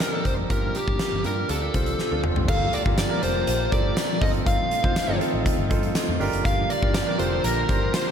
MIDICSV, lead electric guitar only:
0, 0, Header, 1, 2, 480
1, 0, Start_track
1, 0, Key_signature, -2, "minor"
1, 0, Tempo, 495868
1, 483, Time_signature, 4, 2, 24, 8
1, 7853, End_track
2, 0, Start_track
2, 0, Title_t, "Lead electric guitar"
2, 0, Program_c, 0, 29
2, 0, Note_on_c, 0, 70, 85
2, 132, Note_off_c, 0, 70, 0
2, 132, Note_on_c, 0, 69, 85
2, 246, Note_off_c, 0, 69, 0
2, 250, Note_on_c, 0, 72, 91
2, 314, Note_off_c, 0, 72, 0
2, 492, Note_on_c, 0, 70, 90
2, 734, Note_off_c, 0, 70, 0
2, 735, Note_on_c, 0, 67, 86
2, 1176, Note_off_c, 0, 67, 0
2, 1220, Note_on_c, 0, 70, 74
2, 1454, Note_off_c, 0, 70, 0
2, 1457, Note_on_c, 0, 69, 71
2, 2131, Note_off_c, 0, 69, 0
2, 2412, Note_on_c, 0, 77, 101
2, 2649, Note_on_c, 0, 74, 95
2, 2654, Note_off_c, 0, 77, 0
2, 2713, Note_off_c, 0, 74, 0
2, 2890, Note_on_c, 0, 74, 89
2, 3123, Note_off_c, 0, 74, 0
2, 3127, Note_on_c, 0, 72, 89
2, 3604, Note_off_c, 0, 72, 0
2, 3608, Note_on_c, 0, 74, 93
2, 4083, Note_off_c, 0, 74, 0
2, 4087, Note_on_c, 0, 75, 90
2, 4151, Note_off_c, 0, 75, 0
2, 4322, Note_on_c, 0, 77, 86
2, 5003, Note_off_c, 0, 77, 0
2, 6244, Note_on_c, 0, 77, 107
2, 6485, Note_on_c, 0, 74, 100
2, 6491, Note_off_c, 0, 77, 0
2, 6712, Note_off_c, 0, 74, 0
2, 6724, Note_on_c, 0, 74, 94
2, 6957, Note_off_c, 0, 74, 0
2, 6960, Note_on_c, 0, 72, 90
2, 7185, Note_off_c, 0, 72, 0
2, 7204, Note_on_c, 0, 70, 93
2, 7689, Note_on_c, 0, 72, 89
2, 7698, Note_off_c, 0, 70, 0
2, 7853, Note_off_c, 0, 72, 0
2, 7853, End_track
0, 0, End_of_file